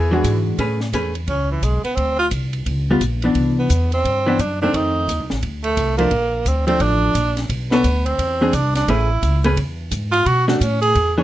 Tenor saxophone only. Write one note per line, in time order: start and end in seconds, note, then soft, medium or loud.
0.00 0.41 E3 medium
1.29 1.48 C#4 medium
1.51 1.65 E3 medium
1.64 1.84 G#3 medium
1.84 1.97 B3 medium
1.96 2.18 C4 medium
2.19 2.27 F4 medium
3.59 3.90 B3 medium
3.94 4.42 C4 medium
4.41 4.61 D4 medium
4.62 4.77 D4 medium
4.75 5.31 D#4 medium
5.64 5.96 A3 medium
5.97 6.49 A#3 medium
6.48 6.66 C4 medium
6.67 6.83 C4 medium
6.82 7.38 D4 loud
7.72 8.07 B3 medium
8.06 8.56 C4 medium
8.54 8.75 D4 medium
8.76 8.91 D4 medium
8.90 9.45 E4 medium
10.12 10.28 F4 loud
10.26 10.47 F#4 loud
10.48 10.63 A3 soft
10.62 10.81 C#4 medium
10.81 11.14 G#4 loud